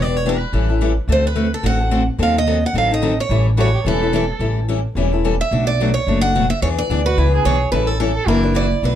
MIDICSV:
0, 0, Header, 1, 5, 480
1, 0, Start_track
1, 0, Tempo, 276370
1, 1888, Time_signature, 4, 2, 24, 8
1, 15548, End_track
2, 0, Start_track
2, 0, Title_t, "Steel-string acoustic guitar"
2, 0, Program_c, 0, 25
2, 36, Note_on_c, 0, 74, 80
2, 288, Note_off_c, 0, 74, 0
2, 288, Note_on_c, 0, 73, 72
2, 473, Note_off_c, 0, 73, 0
2, 502, Note_on_c, 0, 71, 79
2, 1638, Note_off_c, 0, 71, 0
2, 1949, Note_on_c, 0, 72, 85
2, 2174, Note_off_c, 0, 72, 0
2, 2204, Note_on_c, 0, 71, 79
2, 2630, Note_off_c, 0, 71, 0
2, 2676, Note_on_c, 0, 69, 75
2, 2852, Note_off_c, 0, 69, 0
2, 2885, Note_on_c, 0, 78, 91
2, 3567, Note_off_c, 0, 78, 0
2, 3867, Note_on_c, 0, 77, 87
2, 4093, Note_off_c, 0, 77, 0
2, 4140, Note_on_c, 0, 75, 85
2, 4602, Note_off_c, 0, 75, 0
2, 4623, Note_on_c, 0, 78, 79
2, 4802, Note_off_c, 0, 78, 0
2, 4827, Note_on_c, 0, 77, 79
2, 5052, Note_off_c, 0, 77, 0
2, 5100, Note_on_c, 0, 75, 79
2, 5557, Note_off_c, 0, 75, 0
2, 5563, Note_on_c, 0, 73, 85
2, 5988, Note_off_c, 0, 73, 0
2, 6260, Note_on_c, 0, 73, 71
2, 6680, Note_off_c, 0, 73, 0
2, 6736, Note_on_c, 0, 71, 75
2, 7204, Note_off_c, 0, 71, 0
2, 7218, Note_on_c, 0, 69, 65
2, 8086, Note_off_c, 0, 69, 0
2, 9394, Note_on_c, 0, 76, 92
2, 9839, Note_off_c, 0, 76, 0
2, 9846, Note_on_c, 0, 74, 86
2, 10307, Note_off_c, 0, 74, 0
2, 10313, Note_on_c, 0, 73, 84
2, 10786, Note_off_c, 0, 73, 0
2, 10793, Note_on_c, 0, 78, 96
2, 11281, Note_off_c, 0, 78, 0
2, 11288, Note_on_c, 0, 76, 92
2, 11496, Note_off_c, 0, 76, 0
2, 11503, Note_on_c, 0, 73, 95
2, 11590, Note_off_c, 0, 73, 0
2, 11784, Note_on_c, 0, 74, 94
2, 12220, Note_off_c, 0, 74, 0
2, 12259, Note_on_c, 0, 71, 89
2, 12698, Note_off_c, 0, 71, 0
2, 12944, Note_on_c, 0, 73, 86
2, 13397, Note_off_c, 0, 73, 0
2, 13404, Note_on_c, 0, 71, 80
2, 13669, Note_off_c, 0, 71, 0
2, 13669, Note_on_c, 0, 69, 77
2, 13873, Note_off_c, 0, 69, 0
2, 13894, Note_on_c, 0, 69, 76
2, 14379, Note_off_c, 0, 69, 0
2, 14386, Note_on_c, 0, 70, 87
2, 14824, Note_off_c, 0, 70, 0
2, 14870, Note_on_c, 0, 74, 89
2, 15307, Note_off_c, 0, 74, 0
2, 15375, Note_on_c, 0, 71, 80
2, 15548, Note_off_c, 0, 71, 0
2, 15548, End_track
3, 0, Start_track
3, 0, Title_t, "Violin"
3, 0, Program_c, 1, 40
3, 6203, Note_on_c, 1, 66, 80
3, 6458, Note_off_c, 1, 66, 0
3, 6493, Note_on_c, 1, 67, 74
3, 6583, Note_off_c, 1, 67, 0
3, 6659, Note_on_c, 1, 69, 83
3, 7564, Note_off_c, 1, 69, 0
3, 12249, Note_on_c, 1, 66, 75
3, 12467, Note_on_c, 1, 64, 75
3, 12493, Note_off_c, 1, 66, 0
3, 12709, Note_off_c, 1, 64, 0
3, 12719, Note_on_c, 1, 68, 96
3, 13040, Note_off_c, 1, 68, 0
3, 14168, Note_on_c, 1, 69, 82
3, 14366, Note_on_c, 1, 64, 78
3, 14392, Note_off_c, 1, 69, 0
3, 14984, Note_off_c, 1, 64, 0
3, 15548, End_track
4, 0, Start_track
4, 0, Title_t, "Steel-string acoustic guitar"
4, 0, Program_c, 2, 25
4, 0, Note_on_c, 2, 52, 60
4, 0, Note_on_c, 2, 59, 61
4, 0, Note_on_c, 2, 62, 63
4, 0, Note_on_c, 2, 67, 70
4, 283, Note_off_c, 2, 52, 0
4, 285, Note_off_c, 2, 59, 0
4, 287, Note_off_c, 2, 67, 0
4, 289, Note_off_c, 2, 62, 0
4, 445, Note_on_c, 2, 52, 74
4, 446, Note_on_c, 2, 59, 78
4, 452, Note_on_c, 2, 62, 88
4, 459, Note_on_c, 2, 67, 86
4, 626, Note_off_c, 2, 52, 0
4, 626, Note_off_c, 2, 59, 0
4, 630, Note_off_c, 2, 62, 0
4, 633, Note_off_c, 2, 67, 0
4, 920, Note_on_c, 2, 55, 63
4, 928, Note_on_c, 2, 52, 65
4, 930, Note_on_c, 2, 61, 68
4, 934, Note_on_c, 2, 64, 74
4, 937, Note_on_c, 2, 69, 67
4, 1175, Note_off_c, 2, 69, 0
4, 1186, Note_off_c, 2, 55, 0
4, 1191, Note_off_c, 2, 52, 0
4, 1192, Note_off_c, 2, 61, 0
4, 1193, Note_off_c, 2, 64, 0
4, 1196, Note_on_c, 2, 69, 47
4, 1213, Note_on_c, 2, 64, 41
4, 1225, Note_on_c, 2, 61, 41
4, 1393, Note_off_c, 2, 64, 0
4, 1397, Note_off_c, 2, 69, 0
4, 1399, Note_off_c, 2, 61, 0
4, 1406, Note_on_c, 2, 52, 81
4, 1414, Note_on_c, 2, 64, 77
4, 1415, Note_on_c, 2, 55, 73
4, 1418, Note_on_c, 2, 69, 85
4, 1419, Note_on_c, 2, 61, 86
4, 1586, Note_off_c, 2, 52, 0
4, 1590, Note_off_c, 2, 55, 0
4, 1590, Note_off_c, 2, 64, 0
4, 1592, Note_off_c, 2, 61, 0
4, 1592, Note_off_c, 2, 69, 0
4, 1885, Note_on_c, 2, 50, 69
4, 1894, Note_on_c, 2, 57, 64
4, 1895, Note_on_c, 2, 66, 59
4, 1900, Note_on_c, 2, 69, 62
4, 1902, Note_on_c, 2, 60, 55
4, 2208, Note_off_c, 2, 50, 0
4, 2212, Note_off_c, 2, 57, 0
4, 2213, Note_off_c, 2, 66, 0
4, 2215, Note_off_c, 2, 69, 0
4, 2217, Note_off_c, 2, 60, 0
4, 2352, Note_on_c, 2, 50, 72
4, 2355, Note_on_c, 2, 57, 79
4, 2355, Note_on_c, 2, 60, 70
4, 2360, Note_on_c, 2, 66, 79
4, 2368, Note_on_c, 2, 69, 87
4, 2538, Note_off_c, 2, 50, 0
4, 2540, Note_off_c, 2, 57, 0
4, 2540, Note_off_c, 2, 60, 0
4, 2543, Note_off_c, 2, 66, 0
4, 2546, Note_off_c, 2, 69, 0
4, 2833, Note_on_c, 2, 57, 64
4, 2835, Note_on_c, 2, 50, 63
4, 2844, Note_on_c, 2, 60, 70
4, 2844, Note_on_c, 2, 69, 76
4, 2846, Note_on_c, 2, 66, 67
4, 3090, Note_off_c, 2, 69, 0
4, 3102, Note_off_c, 2, 57, 0
4, 3103, Note_off_c, 2, 50, 0
4, 3107, Note_off_c, 2, 60, 0
4, 3109, Note_off_c, 2, 66, 0
4, 3111, Note_on_c, 2, 69, 46
4, 3128, Note_on_c, 2, 66, 41
4, 3144, Note_on_c, 2, 60, 40
4, 3302, Note_off_c, 2, 60, 0
4, 3308, Note_off_c, 2, 69, 0
4, 3313, Note_off_c, 2, 66, 0
4, 3320, Note_on_c, 2, 57, 77
4, 3322, Note_on_c, 2, 50, 67
4, 3323, Note_on_c, 2, 60, 88
4, 3329, Note_on_c, 2, 69, 86
4, 3334, Note_on_c, 2, 66, 81
4, 3502, Note_off_c, 2, 57, 0
4, 3503, Note_off_c, 2, 50, 0
4, 3503, Note_off_c, 2, 60, 0
4, 3506, Note_off_c, 2, 69, 0
4, 3509, Note_off_c, 2, 66, 0
4, 3795, Note_on_c, 2, 51, 58
4, 3805, Note_on_c, 2, 54, 68
4, 3809, Note_on_c, 2, 69, 64
4, 3811, Note_on_c, 2, 60, 65
4, 3815, Note_on_c, 2, 63, 60
4, 4122, Note_off_c, 2, 51, 0
4, 4127, Note_off_c, 2, 54, 0
4, 4129, Note_off_c, 2, 69, 0
4, 4130, Note_off_c, 2, 60, 0
4, 4132, Note_off_c, 2, 63, 0
4, 4283, Note_on_c, 2, 51, 74
4, 4287, Note_on_c, 2, 54, 71
4, 4294, Note_on_c, 2, 63, 81
4, 4297, Note_on_c, 2, 60, 82
4, 4297, Note_on_c, 2, 69, 88
4, 4463, Note_off_c, 2, 51, 0
4, 4465, Note_off_c, 2, 54, 0
4, 4468, Note_off_c, 2, 63, 0
4, 4470, Note_off_c, 2, 60, 0
4, 4470, Note_off_c, 2, 69, 0
4, 4774, Note_on_c, 2, 51, 64
4, 4778, Note_on_c, 2, 54, 70
4, 4786, Note_on_c, 2, 60, 70
4, 4786, Note_on_c, 2, 63, 73
4, 4793, Note_on_c, 2, 69, 79
4, 5031, Note_off_c, 2, 69, 0
4, 5032, Note_off_c, 2, 51, 0
4, 5034, Note_off_c, 2, 54, 0
4, 5037, Note_off_c, 2, 60, 0
4, 5037, Note_off_c, 2, 63, 0
4, 5052, Note_on_c, 2, 69, 45
4, 5058, Note_on_c, 2, 63, 46
4, 5070, Note_on_c, 2, 60, 43
4, 5234, Note_off_c, 2, 60, 0
4, 5237, Note_off_c, 2, 63, 0
4, 5242, Note_on_c, 2, 51, 78
4, 5244, Note_off_c, 2, 69, 0
4, 5255, Note_on_c, 2, 60, 85
4, 5257, Note_on_c, 2, 54, 89
4, 5257, Note_on_c, 2, 63, 90
4, 5265, Note_on_c, 2, 69, 80
4, 5422, Note_off_c, 2, 51, 0
4, 5428, Note_off_c, 2, 60, 0
4, 5429, Note_off_c, 2, 54, 0
4, 5430, Note_off_c, 2, 63, 0
4, 5434, Note_off_c, 2, 69, 0
4, 5734, Note_on_c, 2, 52, 61
4, 5741, Note_on_c, 2, 55, 57
4, 5748, Note_on_c, 2, 61, 61
4, 5748, Note_on_c, 2, 69, 68
4, 5749, Note_on_c, 2, 64, 67
4, 6051, Note_off_c, 2, 52, 0
4, 6054, Note_off_c, 2, 55, 0
4, 6058, Note_off_c, 2, 61, 0
4, 6058, Note_off_c, 2, 64, 0
4, 6058, Note_off_c, 2, 69, 0
4, 6201, Note_on_c, 2, 52, 73
4, 6208, Note_on_c, 2, 55, 87
4, 6208, Note_on_c, 2, 61, 75
4, 6212, Note_on_c, 2, 64, 86
4, 6219, Note_on_c, 2, 69, 84
4, 6382, Note_off_c, 2, 52, 0
4, 6385, Note_off_c, 2, 55, 0
4, 6385, Note_off_c, 2, 61, 0
4, 6387, Note_off_c, 2, 64, 0
4, 6390, Note_off_c, 2, 69, 0
4, 6698, Note_on_c, 2, 55, 58
4, 6701, Note_on_c, 2, 52, 63
4, 6710, Note_on_c, 2, 64, 72
4, 6712, Note_on_c, 2, 61, 62
4, 6712, Note_on_c, 2, 69, 71
4, 6953, Note_off_c, 2, 55, 0
4, 6955, Note_off_c, 2, 52, 0
4, 6956, Note_off_c, 2, 69, 0
4, 6959, Note_off_c, 2, 64, 0
4, 6960, Note_off_c, 2, 61, 0
4, 6977, Note_on_c, 2, 69, 48
4, 6990, Note_on_c, 2, 64, 50
4, 7005, Note_on_c, 2, 61, 41
4, 7164, Note_off_c, 2, 61, 0
4, 7165, Note_off_c, 2, 64, 0
4, 7166, Note_off_c, 2, 69, 0
4, 7172, Note_on_c, 2, 52, 86
4, 7174, Note_on_c, 2, 55, 88
4, 7185, Note_on_c, 2, 61, 79
4, 7186, Note_on_c, 2, 64, 92
4, 7191, Note_on_c, 2, 69, 81
4, 7347, Note_off_c, 2, 52, 0
4, 7348, Note_off_c, 2, 55, 0
4, 7353, Note_off_c, 2, 61, 0
4, 7354, Note_off_c, 2, 64, 0
4, 7357, Note_off_c, 2, 69, 0
4, 7647, Note_on_c, 2, 52, 57
4, 7648, Note_on_c, 2, 61, 59
4, 7650, Note_on_c, 2, 55, 68
4, 7654, Note_on_c, 2, 69, 65
4, 7657, Note_on_c, 2, 64, 65
4, 7968, Note_off_c, 2, 52, 0
4, 7968, Note_off_c, 2, 61, 0
4, 7969, Note_off_c, 2, 55, 0
4, 7971, Note_off_c, 2, 69, 0
4, 7973, Note_off_c, 2, 64, 0
4, 8137, Note_on_c, 2, 52, 75
4, 8142, Note_on_c, 2, 61, 71
4, 8147, Note_on_c, 2, 64, 84
4, 8148, Note_on_c, 2, 55, 76
4, 8153, Note_on_c, 2, 69, 88
4, 8310, Note_off_c, 2, 52, 0
4, 8312, Note_off_c, 2, 61, 0
4, 8315, Note_off_c, 2, 55, 0
4, 8315, Note_off_c, 2, 64, 0
4, 8318, Note_off_c, 2, 69, 0
4, 8622, Note_on_c, 2, 55, 66
4, 8626, Note_on_c, 2, 52, 58
4, 8636, Note_on_c, 2, 64, 69
4, 8637, Note_on_c, 2, 61, 68
4, 8638, Note_on_c, 2, 69, 76
4, 8876, Note_off_c, 2, 55, 0
4, 8878, Note_off_c, 2, 52, 0
4, 8878, Note_off_c, 2, 69, 0
4, 8883, Note_off_c, 2, 61, 0
4, 8883, Note_off_c, 2, 64, 0
4, 8899, Note_on_c, 2, 69, 48
4, 8911, Note_on_c, 2, 64, 42
4, 8921, Note_on_c, 2, 61, 40
4, 9087, Note_off_c, 2, 69, 0
4, 9090, Note_off_c, 2, 61, 0
4, 9094, Note_off_c, 2, 64, 0
4, 9108, Note_on_c, 2, 52, 84
4, 9111, Note_on_c, 2, 61, 74
4, 9115, Note_on_c, 2, 55, 85
4, 9118, Note_on_c, 2, 69, 92
4, 9121, Note_on_c, 2, 64, 78
4, 9276, Note_off_c, 2, 52, 0
4, 9277, Note_off_c, 2, 61, 0
4, 9279, Note_off_c, 2, 55, 0
4, 9281, Note_off_c, 2, 69, 0
4, 9282, Note_off_c, 2, 64, 0
4, 9578, Note_on_c, 2, 47, 64
4, 9591, Note_on_c, 2, 54, 67
4, 9593, Note_on_c, 2, 57, 66
4, 9596, Note_on_c, 2, 62, 68
4, 9602, Note_on_c, 2, 66, 67
4, 9894, Note_off_c, 2, 47, 0
4, 9901, Note_off_c, 2, 54, 0
4, 9902, Note_off_c, 2, 57, 0
4, 9903, Note_off_c, 2, 62, 0
4, 9906, Note_off_c, 2, 66, 0
4, 10080, Note_on_c, 2, 47, 78
4, 10088, Note_on_c, 2, 54, 71
4, 10089, Note_on_c, 2, 66, 73
4, 10092, Note_on_c, 2, 57, 73
4, 10092, Note_on_c, 2, 62, 80
4, 10242, Note_off_c, 2, 47, 0
4, 10246, Note_off_c, 2, 54, 0
4, 10247, Note_off_c, 2, 66, 0
4, 10248, Note_off_c, 2, 57, 0
4, 10248, Note_off_c, 2, 62, 0
4, 10555, Note_on_c, 2, 47, 62
4, 10561, Note_on_c, 2, 57, 69
4, 10561, Note_on_c, 2, 62, 69
4, 10562, Note_on_c, 2, 54, 66
4, 10563, Note_on_c, 2, 66, 67
4, 10803, Note_off_c, 2, 66, 0
4, 10804, Note_off_c, 2, 47, 0
4, 10806, Note_off_c, 2, 62, 0
4, 10807, Note_off_c, 2, 54, 0
4, 10807, Note_off_c, 2, 57, 0
4, 10824, Note_on_c, 2, 66, 52
4, 10837, Note_on_c, 2, 62, 45
4, 10857, Note_on_c, 2, 57, 40
4, 11011, Note_off_c, 2, 66, 0
4, 11017, Note_off_c, 2, 62, 0
4, 11018, Note_off_c, 2, 57, 0
4, 11033, Note_on_c, 2, 47, 77
4, 11039, Note_on_c, 2, 57, 77
4, 11041, Note_on_c, 2, 54, 80
4, 11041, Note_on_c, 2, 62, 91
4, 11042, Note_on_c, 2, 66, 96
4, 11199, Note_off_c, 2, 47, 0
4, 11202, Note_off_c, 2, 57, 0
4, 11203, Note_off_c, 2, 54, 0
4, 11203, Note_off_c, 2, 62, 0
4, 11204, Note_off_c, 2, 66, 0
4, 11509, Note_on_c, 2, 52, 62
4, 11513, Note_on_c, 2, 59, 68
4, 11522, Note_on_c, 2, 62, 74
4, 11522, Note_on_c, 2, 68, 72
4, 11821, Note_off_c, 2, 52, 0
4, 11823, Note_off_c, 2, 59, 0
4, 11827, Note_off_c, 2, 62, 0
4, 11827, Note_off_c, 2, 68, 0
4, 11985, Note_on_c, 2, 52, 75
4, 11987, Note_on_c, 2, 59, 76
4, 12001, Note_on_c, 2, 62, 89
4, 12001, Note_on_c, 2, 68, 96
4, 12155, Note_off_c, 2, 52, 0
4, 12156, Note_off_c, 2, 59, 0
4, 12163, Note_off_c, 2, 62, 0
4, 12164, Note_off_c, 2, 68, 0
4, 12465, Note_on_c, 2, 52, 66
4, 12467, Note_on_c, 2, 59, 70
4, 12470, Note_on_c, 2, 62, 66
4, 12474, Note_on_c, 2, 68, 73
4, 12716, Note_off_c, 2, 68, 0
4, 12719, Note_off_c, 2, 52, 0
4, 12720, Note_off_c, 2, 59, 0
4, 12722, Note_off_c, 2, 62, 0
4, 12737, Note_on_c, 2, 68, 44
4, 12749, Note_on_c, 2, 62, 43
4, 12761, Note_on_c, 2, 59, 43
4, 12928, Note_off_c, 2, 68, 0
4, 12931, Note_off_c, 2, 59, 0
4, 12934, Note_off_c, 2, 62, 0
4, 12952, Note_on_c, 2, 59, 89
4, 12953, Note_on_c, 2, 52, 87
4, 12962, Note_on_c, 2, 62, 89
4, 12967, Note_on_c, 2, 68, 98
4, 13119, Note_off_c, 2, 59, 0
4, 13120, Note_off_c, 2, 52, 0
4, 13124, Note_off_c, 2, 62, 0
4, 13127, Note_off_c, 2, 68, 0
4, 13422, Note_on_c, 2, 52, 65
4, 13432, Note_on_c, 2, 61, 66
4, 13433, Note_on_c, 2, 55, 60
4, 13433, Note_on_c, 2, 64, 69
4, 13434, Note_on_c, 2, 69, 66
4, 13737, Note_off_c, 2, 52, 0
4, 13742, Note_off_c, 2, 61, 0
4, 13743, Note_off_c, 2, 55, 0
4, 13743, Note_off_c, 2, 64, 0
4, 13743, Note_off_c, 2, 69, 0
4, 13898, Note_on_c, 2, 52, 92
4, 13900, Note_on_c, 2, 55, 74
4, 13907, Note_on_c, 2, 61, 72
4, 13908, Note_on_c, 2, 64, 83
4, 13911, Note_on_c, 2, 69, 86
4, 14072, Note_off_c, 2, 52, 0
4, 14073, Note_off_c, 2, 55, 0
4, 14076, Note_off_c, 2, 61, 0
4, 14077, Note_off_c, 2, 64, 0
4, 14079, Note_off_c, 2, 69, 0
4, 14386, Note_on_c, 2, 52, 72
4, 14386, Note_on_c, 2, 58, 70
4, 14388, Note_on_c, 2, 62, 71
4, 14394, Note_on_c, 2, 66, 73
4, 14623, Note_off_c, 2, 66, 0
4, 14640, Note_off_c, 2, 52, 0
4, 14640, Note_off_c, 2, 58, 0
4, 14641, Note_off_c, 2, 62, 0
4, 14644, Note_on_c, 2, 66, 52
4, 14659, Note_on_c, 2, 62, 49
4, 14668, Note_on_c, 2, 58, 44
4, 14827, Note_off_c, 2, 58, 0
4, 14832, Note_off_c, 2, 62, 0
4, 14836, Note_off_c, 2, 66, 0
4, 14839, Note_on_c, 2, 52, 84
4, 14848, Note_on_c, 2, 58, 86
4, 14852, Note_on_c, 2, 62, 93
4, 14857, Note_on_c, 2, 66, 84
4, 15023, Note_off_c, 2, 52, 0
4, 15027, Note_off_c, 2, 58, 0
4, 15029, Note_off_c, 2, 62, 0
4, 15032, Note_off_c, 2, 66, 0
4, 15338, Note_on_c, 2, 47, 57
4, 15344, Note_on_c, 2, 57, 66
4, 15349, Note_on_c, 2, 54, 66
4, 15350, Note_on_c, 2, 62, 66
4, 15354, Note_on_c, 2, 66, 69
4, 15548, Note_off_c, 2, 47, 0
4, 15548, Note_off_c, 2, 54, 0
4, 15548, Note_off_c, 2, 57, 0
4, 15548, Note_off_c, 2, 62, 0
4, 15548, Note_off_c, 2, 66, 0
4, 15548, End_track
5, 0, Start_track
5, 0, Title_t, "Upright bass"
5, 0, Program_c, 3, 32
5, 0, Note_on_c, 3, 28, 80
5, 729, Note_off_c, 3, 28, 0
5, 914, Note_on_c, 3, 33, 74
5, 1687, Note_off_c, 3, 33, 0
5, 1869, Note_on_c, 3, 38, 77
5, 2644, Note_off_c, 3, 38, 0
5, 2837, Note_on_c, 3, 33, 80
5, 3608, Note_off_c, 3, 33, 0
5, 3796, Note_on_c, 3, 39, 82
5, 4567, Note_off_c, 3, 39, 0
5, 4752, Note_on_c, 3, 33, 75
5, 5525, Note_off_c, 3, 33, 0
5, 5719, Note_on_c, 3, 33, 82
5, 6489, Note_off_c, 3, 33, 0
5, 6682, Note_on_c, 3, 28, 80
5, 7451, Note_off_c, 3, 28, 0
5, 7631, Note_on_c, 3, 33, 80
5, 8405, Note_off_c, 3, 33, 0
5, 8601, Note_on_c, 3, 28, 77
5, 9371, Note_off_c, 3, 28, 0
5, 9576, Note_on_c, 3, 35, 85
5, 10341, Note_off_c, 3, 35, 0
5, 10538, Note_on_c, 3, 30, 81
5, 11302, Note_off_c, 3, 30, 0
5, 11499, Note_on_c, 3, 40, 83
5, 11879, Note_off_c, 3, 40, 0
5, 11979, Note_on_c, 3, 38, 79
5, 12383, Note_off_c, 3, 38, 0
5, 12453, Note_on_c, 3, 37, 78
5, 12859, Note_off_c, 3, 37, 0
5, 12934, Note_on_c, 3, 35, 74
5, 13340, Note_off_c, 3, 35, 0
5, 13406, Note_on_c, 3, 33, 80
5, 14175, Note_off_c, 3, 33, 0
5, 14351, Note_on_c, 3, 30, 85
5, 15126, Note_off_c, 3, 30, 0
5, 15318, Note_on_c, 3, 35, 78
5, 15548, Note_off_c, 3, 35, 0
5, 15548, End_track
0, 0, End_of_file